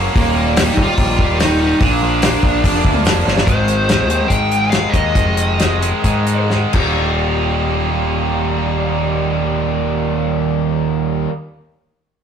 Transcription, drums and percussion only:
0.16 kick, open hi-hat
0.57 snare, open hi-hat, tambourine
0.77 kick
0.98 kick, open hi-hat
1.19 kick
1.40 snare, open hi-hat, tambourine
1.81 kick, open hi-hat
2.22 snare, open hi-hat, tambourine
2.43 kick
2.64 kick, open hi-hat
2.85 kick
3.05 snare, open hi-hat, tambourine
3.28 snare
3.38 snare
3.47 kick, closed hi-hat
3.68 closed hi-hat
3.89 snare, closed hi-hat
4.10 closed hi-hat
4.30 kick, closed hi-hat
4.51 closed hi-hat
4.72 snare, closed hi-hat
4.94 kick, closed hi-hat
5.15 kick, closed hi-hat
5.37 closed hi-hat
5.60 snare, closed hi-hat
5.82 closed hi-hat
6.04 kick, closed hi-hat
6.27 closed hi-hat
6.50 snare
6.73 kick, crash

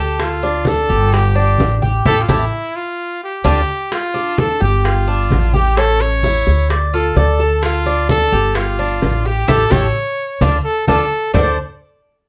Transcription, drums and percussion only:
0.19 high bongo, high conga, maracas
0.43 high bongo, high conga, maracas
0.65 high bongo, high conga, maracas
0.89 high bongo, high conga, maracas
1.12 high bongo, high conga, maracas
1.35 high conga, maracas
1.58 high bongo, low bongo, high conga, maracas
1.82 high bongo, high conga, maracas
2.05 high bongo, high conga, maracas
2.28 high bongo, high conga, maracas
3.45 high bongo, high conga, maracas
3.92 high bongo, high conga
4.15 high bongo, high conga
4.38 high bongo, high conga
4.62 high bongo, high conga
4.85 high bongo, high conga
5.08 high conga
5.30 high bongo, low bongo, high conga
5.53 high bongo, high conga
5.77 high bongo, high conga
6.00 high bongo, high conga
6.23 high bongo, high conga
6.46 high bongo, high conga
6.69 high bongo, high conga
6.93 high conga
7.16 high bongo, low bongo, high conga
7.39 high bongo, high conga
7.63 high bongo, high conga, maracas
7.86 high bongo, high conga, maracas
8.09 high bongo, high conga, maracas
8.32 high bongo, high conga, maracas
8.54 high bongo, high conga, maracas
8.78 high conga, maracas
9.02 high bongo, low bongo, high conga, maracas
9.25 high bongo, maracas
9.48 low bongo, high conga, maracas
9.71 low bongo, high conga, maracas
10.41 low bongo, high conga, maracas
10.88 low bongo, high conga, maracas
11.34 low bongo, low conga, maracas

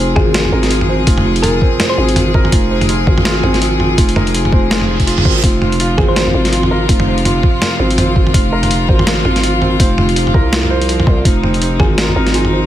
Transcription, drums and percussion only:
0.16 kick, mid tom
0.34 snare, closed hi-hat
0.45 mid tom
0.63 snare, closed hi-hat
0.71 closed hi-hat
0.81 mid tom
1.07 kick, closed hi-hat
1.18 mid tom
1.36 closed hi-hat
1.43 closed hi-hat, mid tom
1.62 kick
1.80 snare, closed hi-hat, mid tom
2.09 closed hi-hat
2.16 closed hi-hat, mid tom
2.34 kick
2.45 mid tom
2.52 kick, closed hi-hat
2.81 closed hi-hat, mid tom
2.89 closed hi-hat
3.07 kick
3.18 mid tom
3.25 snare, closed hi-hat
3.44 mid tom
3.54 snare, closed hi-hat
3.62 closed hi-hat
3.80 mid tom
3.98 kick, closed hi-hat
4.09 closed hi-hat
4.16 mid tom
4.27 closed hi-hat
4.34 closed hi-hat
4.45 mid tom
4.53 kick
4.71 snare, closed hi-hat
4.81 mid tom
5.00 kick, closed hi-hat
5.07 closed hi-hat
5.18 mid tom
5.25 kick
5.43 kick, closed hi-hat
5.62 mid tom
5.72 closed hi-hat
5.80 closed hi-hat
5.98 kick, mid tom
6.16 snare, closed hi-hat
6.27 mid tom
6.45 snare, closed hi-hat
6.53 closed hi-hat
6.63 mid tom
6.89 kick, closed hi-hat
7.00 mid tom
7.18 closed hi-hat
7.25 closed hi-hat, mid tom
7.43 kick
7.62 snare, closed hi-hat, mid tom
7.91 closed hi-hat
7.98 closed hi-hat, mid tom
8.16 kick
8.27 mid tom
8.34 kick, closed hi-hat
8.63 closed hi-hat, mid tom
8.71 closed hi-hat
8.89 kick
8.99 mid tom
9.07 snare, closed hi-hat
9.25 mid tom
9.36 snare, closed hi-hat
9.44 closed hi-hat
9.62 mid tom
9.80 kick, closed hi-hat
9.98 mid tom
10.09 closed hi-hat
10.16 closed hi-hat
10.27 mid tom
10.34 kick
10.53 snare, closed hi-hat
10.63 mid tom
10.82 closed hi-hat
10.89 closed hi-hat
11.00 mid tom
11.07 kick
11.25 kick, closed hi-hat
11.44 mid tom
11.54 closed hi-hat
11.62 closed hi-hat
11.80 kick, mid tom
11.98 snare, closed hi-hat
12.09 mid tom
12.27 snare, closed hi-hat
12.34 closed hi-hat
12.45 mid tom

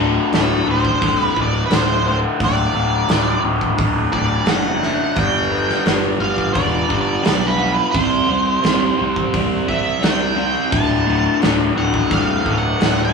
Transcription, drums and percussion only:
0.33 snare, open hi-hat
0.85 kick
1.02 kick, open hi-hat
1.36 kick
1.71 snare, open hi-hat
2.40 kick, open hi-hat
3.09 snare, open hi-hat
3.61 kick
3.78 kick, open hi-hat
4.13 kick
4.46 snare, open hi-hat
4.83 snare
5.16 kick, open hi-hat
5.69 snare
5.86 snare, open hi-hat
6.38 kick
6.55 kick, open hi-hat
6.90 kick
7.25 snare, open hi-hat
7.95 kick, open hi-hat
8.64 snare, open hi-hat
9.16 kick
9.34 kick, open hi-hat
9.69 kick
10.03 snare, open hi-hat
10.72 kick, open hi-hat
11.42 snare, open hi-hat
11.94 kick
12.11 kick, open hi-hat
12.46 kick
12.81 snare, open hi-hat

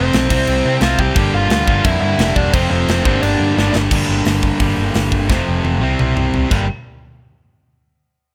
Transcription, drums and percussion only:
0.13 snare, crash
0.30 kick, crash
0.47 crash
0.81 snare, crash
0.99 kick
1.16 kick, crash
1.50 snare, crash
1.68 kick
1.84 kick, crash
2.19 snare, crash
2.36 kick
2.54 kick, crash
2.88 snare, crash
3.05 kick
3.23 crash
3.58 snare
3.76 snare
3.91 kick, crash
4.25 snare, open hi-hat
4.43 kick
4.60 kick, open hi-hat
4.94 snare, open hi-hat
5.12 kick
5.30 kick, snare
5.65 high tom
5.99 mid tom
6.17 mid tom
6.34 floor tom
6.51 kick, crash

